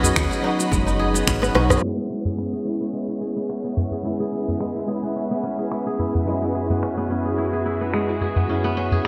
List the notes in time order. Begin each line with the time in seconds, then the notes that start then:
Already playing: B1 F#3 G#3 B3 C#4 D#4 F#4 B4 D#5 B5
0.03 G#4, udu, shaker
0.16 D#2 D#4, finger snap, kick, shaker
0.31 G#4, shaker
0.42 F#3 B3 D#4
0.46 F#4
0.59 B3, shaker
0.71 F#1 G#3, kick, shaker
0.87 D#4, shaker
0.99 G#4
1.14 B3, shaker
1.27 G#1 C#4, finger snap, kick, shaker
1.42 B3, cross-stick, shaker
1.54 B1 F#3 B3 C#4 D#4 F#4, cross-stick
1.69 G#4, cross-stick, udu, shaker
1.81 G#3 B3 C#4 G#4 C#5 E5
1.85 E4
1.98 B3
2.10 C#4
2.25 G#4, udu
2.38 E4, finger snap
2.53 G#4
2.65 G#3 B3 C#4 E4
2.69 E4
2.80 B3
2.93 G#3
3.08 E4
3.21 G#4
3.36 B3
3.49 C#4, finger snap
3.64 B3
3.77 C#4, udu
3.91 G#4, udu
4.03 G#3 B3 C#4 E4 B4
4.07 E4
4.20 G#4
4.32 E4
4.48 B3, udu
4.60 G#3, finger snap
4.75 E4
4.87 G#3 B3 C#4 E4 G#4
5.03 B3
5.16 C#4
5.31 B3
5.43 C#4
5.59 G#4
5.71 E4, finger snap
5.87 G#4
5.99 E4, udu
6.14 B3, udu
6.25 F#2 G#3 B3 C#4 E4 F#4 G#4
6.42 E4
6.55 G#4
6.70 B3, udu
6.82 C#4, finger snap
6.97 B3
7.08 F#2 B3 C#4 E4
7.12 G#4
7.25 G#4
7.38 E4
7.53 G#4
7.66 E4
7.81 B3
7.93 G#3, finger snap
8.09 E4
8.21 G#4, udu
8.36 B3, udu
8.48 F#2 B3 C#4 E4 G#4
8.64 B3
8.77 C#4
8.91 G#4, udu
9.05 E4